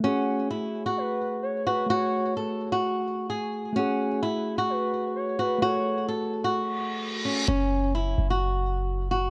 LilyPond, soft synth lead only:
\new Staff \with { instrumentName = "Soft synth lead" } { \time 4/4 \key fis \minor \tempo 4 = 129 fis''4 r4 b'4 cis''8 b'8 | cis''4 r2. | fis''4 r4 b'4 cis''8 b'8 | cis''4 r2. |
r1 | }